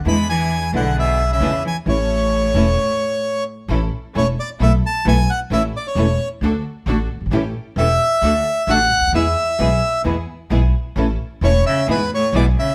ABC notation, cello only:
X:1
M:4/4
L:1/16
Q:1/4=132
K:Amix
V:1 name="Cello" clef=bass
^G,2 E,4 D,2 B,,3 C,3 E,2 | A,,12- A,,2 z2 | [K:A] z16 | z16 |
z16 | z16 | z4 A,,2 C,2 G,,2 A,,2 B,,2 C,2 |]